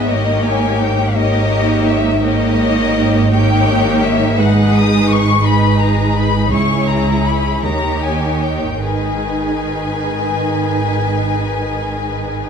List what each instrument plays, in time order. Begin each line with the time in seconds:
0.07 double bass section G#1, cello section G#2, viola section A#3 D#4, violin section G4 C#5 D#5
0.43 violin section G#5
0.78 violin section G5
1.15 viola section A#3 D#4, violin section G4 C#5 D#5
1.87 violin section E5
2.22 viola section A#3 D#4, violin section G4 C#5 D#5
3.31 viola section A#3 D#4, violin section G4 C#5 G5
4.03 violin section E5
4.37 double bass section G#1, cello section G#2, viola section G#3 D#4, violin section G#4 B4 F#5
4.74 violin section D#6
5.10 violin section C#6
5.42 viola section G#3 D#4, violin section G#4 B4 B5
5.79 violin section A#5
6.15 violin section B5
6.50 cello section C#2, double bass section C#2, viola section G#3 E4, violin section G#4 C#5 C#6
6.88 violin section A#5
7.25 violin section B5
7.62 double bass section D#2, cello section D#2, viola section D#3 D#4, violin section G4 C#5 A#5
8.02 violin section G#5
8.41 violin section G5
8.80 double bass section G#1, cello section G#2, viola section D#3 D#4, violin section G#4 B4 G#5